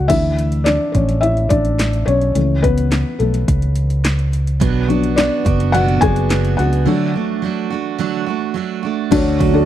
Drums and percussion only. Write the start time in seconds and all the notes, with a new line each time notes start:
0.10 kick, closed hi-hat, crash
0.39 closed hi-hat
0.52 closed hi-hat
0.66 snare, clap, closed hi-hat
0.95 kick, closed hi-hat
1.09 snare, closed hi-hat
1.23 closed hi-hat
1.37 closed hi-hat
1.50 kick, closed hi-hat
1.65 closed hi-hat
1.79 snare, clap, closed hi-hat
1.93 closed hi-hat
2.08 closed hi-hat
2.21 closed hi-hat
2.35 closed hi-hat
2.64 kick, closed hi-hat
2.78 closed hi-hat
2.92 snare, clap, closed hi-hat
3.20 closed hi-hat
3.34 snare, closed hi-hat
3.48 kick, closed hi-hat
3.62 closed hi-hat
3.76 closed hi-hat
3.90 closed hi-hat
4.05 snare, clap, closed hi-hat
4.19 closed hi-hat
4.33 closed hi-hat
4.47 closed hi-hat
4.61 kick, closed hi-hat
4.90 closed hi-hat
5.04 closed hi-hat
5.18 snare, clap, closed hi-hat
5.46 kick, closed hi-hat
5.60 snare, closed hi-hat
5.75 closed hi-hat
5.88 closed hi-hat
6.02 kick, closed hi-hat
6.16 closed hi-hat
6.30 snare, clap, closed hi-hat
6.45 closed hi-hat
6.59 closed hi-hat
6.73 closed hi-hat
9.12 kick, crash, ride
9.40 kick, ride